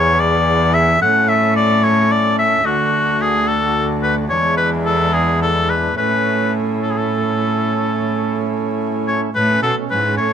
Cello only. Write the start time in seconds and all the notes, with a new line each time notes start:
Already playing: E2
1.02 A2
2.66 D2
4.30 E2
5.98 A2
9.35 A2
9.63 B2
9.91 G#2
10.18 A2